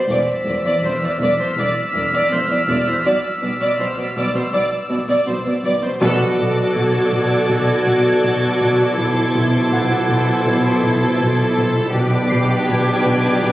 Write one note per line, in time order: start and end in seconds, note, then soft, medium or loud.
0.00 1.57 C5 soft
0.00 1.02 E6 soft
0.09 0.16 E1 soft
0.09 0.16 E2 medium
0.09 0.27 D5 soft
0.09 4.41 E6 soft
0.09 4.12 B6 soft
0.46 0.53 E1 soft
0.46 0.53 E2 soft
0.46 0.55 D5 soft
0.65 0.72 E2 medium
0.65 0.82 D5 soft
0.82 0.90 E1 soft
0.82 0.90 E2 soft
0.82 0.91 C5 soft
0.82 4.41 F6 soft
1.01 1.09 E2 soft
1.01 1.11 D5 soft
1.20 1.27 E1 medium
1.20 1.27 E2 soft
1.20 1.38 D5 soft
1.38 1.46 E2 soft
1.38 1.47 C5 soft
1.57 1.65 E1 soft
1.57 1.64 E2 soft
1.57 1.75 D5 soft
1.93 2.02 E1 soft
1.93 2.01 E2 soft
1.93 2.03 D5 soft
2.12 2.20 E2 soft
2.12 2.30 D5 soft
2.31 2.39 E1 soft
2.31 2.38 E2 soft
2.31 2.39 C5 soft
2.49 2.56 E2 soft
2.49 2.58 D5 soft
2.68 2.76 E1 soft
2.68 2.75 E2 soft
2.68 2.86 D5 soft
2.87 2.94 E2 soft
2.87 2.95 C5 soft
3.05 3.13 B1 soft
3.05 3.13 B2 soft
3.05 3.23 D5 soft
3.42 3.50 B1 soft
3.42 3.50 B2 soft
3.42 3.50 D5 soft
3.60 3.68 B2 soft
3.60 3.78 D5 soft
3.79 3.87 B1 soft
3.79 3.86 B2 soft
3.79 3.87 C5 soft
3.97 4.05 B2 soft
3.97 4.06 D5 soft
4.16 4.24 B1 soft
4.16 4.23 B2 soft
4.16 4.34 D5 soft
4.34 4.42 B2 soft
4.34 4.42 C5 soft
4.41 5.60 E6 soft
4.53 4.61 B1 soft
4.53 4.61 B2 soft
4.53 4.70 D5 soft
4.90 4.98 B1 soft
4.90 4.98 B2 soft
4.90 4.98 D5 soft
5.08 5.16 B2 soft
5.08 5.26 D5 soft
5.27 5.35 B1 soft
5.27 5.34 B2 soft
5.27 5.35 C5 soft
5.46 5.53 B2 soft
5.46 5.53 D5 soft
5.64 5.71 B1 soft
5.64 5.71 B2 soft
5.64 5.82 D5 soft
5.82 5.90 B2 soft
5.82 5.90 C5 soft
6.00 11.90 B1 soft
6.00 11.89 B2 soft
6.00 7.08 B2 medium
6.00 6.24 B2 loud
6.00 8.93 F#4 soft
6.00 11.90 A4 soft
6.00 8.93 D5 soft
6.00 11.53 D6 soft
6.38 6.61 B2 soft
6.38 9.01 D5 soft
6.76 6.98 B2 soft
6.76 11.53 G#6 soft
7.13 7.35 B2 soft
7.49 7.72 B2 medium
7.87 8.09 B2 medium
8.24 8.46 B2 soft
8.61 8.83 B2 soft
8.97 9.20 B2 medium
8.97 11.90 E4 soft
8.97 11.90 C5 soft
9.35 9.57 B2 medium
9.72 9.94 B2 soft
9.72 13.52 F#5 soft
10.09 10.31 B2 soft
10.46 10.68 B2 medium
10.83 11.05 B2 soft
11.20 11.42 B2 soft
11.58 11.80 B2 soft
11.94 13.52 B1 soft
11.94 13.52 B2 soft
11.94 12.17 B2 medium
11.94 13.52 D4 soft
11.94 13.52 G4 soft
11.94 13.52 B4 soft
11.94 13.52 D6 soft
12.30 12.54 B2 medium
12.30 13.52 C7 soft
12.68 12.91 B2 medium
12.68 13.52 G#6 soft
13.06 13.28 B2 medium
13.43 13.52 B2 medium